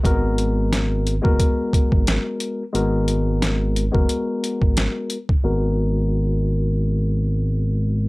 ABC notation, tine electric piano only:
X:1
M:4/4
L:1/16
Q:"Swing 16ths" 1/4=89
K:G#m
V:1 name="Tine electric piano"
[G,B,FA]6 z [G,B,FA]8 z | [G,B,FA]6 z [G,B,FA]6- [G,B,FA] z2 | [G,B,FA]16 |]